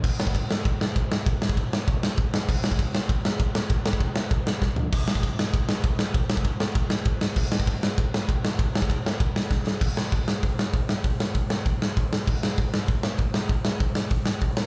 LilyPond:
\new DrumStaff \with { instrumentName = "Drums" } \drummode { \time 4/4 \tempo 4 = 196 <cymc bd>8 sn16 bd16 <bd cymr>8 sn8 <bd cymr>8 sn8 <bd cymr>8 sn8 | <bd cymr>8 sn16 bd16 <bd cymr>8 sn8 <bd cymr>8 sn8 <bd cymr>8 sn8 | <cymc bd>8 sn16 bd16 <bd cymr>8 sn8 <bd cymr>8 sn8 <bd cymr>8 sn8 | <bd cymr>8 sn16 bd16 <bd cymr>8 sn8 <bd cymr>8 sn8 <bd sn>8 tomfh8 |
<cymc bd cymr>8 sn16 bd16 <bd cymr>8 sn8 <bd cymr>8 sn8 <bd cymr>8 sn8 | <bd cymr>8 sn16 bd16 <bd cymr>8 sn8 <bd cymr>8 sn8 <bd cymr>8 sn8 | <cymc bd>8 sn16 bd16 <bd cymr>8 sn8 <bd cymr>8 sn8 <bd cymr>8 sn8 | <bd cymr>8 sn16 bd16 <bd cymr>8 sn8 <bd cymr>8 sn8 <bd sn>8 sn8 |
<cymc bd>8 sn8 <hho bd>8 sn8 <hho bd>8 sn8 <hho bd>8 sn8 | <hho bd>8 sn8 <hho bd>8 sn8 <hho bd>8 sn8 <hho bd>8 sn8 | <cymc bd>8 sn8 <hho bd>8 sn8 <hho bd>8 sn8 <hho bd>8 sn8 | <hho bd>8 sn8 <hho bd>8 sn8 <hho bd>8 sn8 <hho bd>8 sn8 | }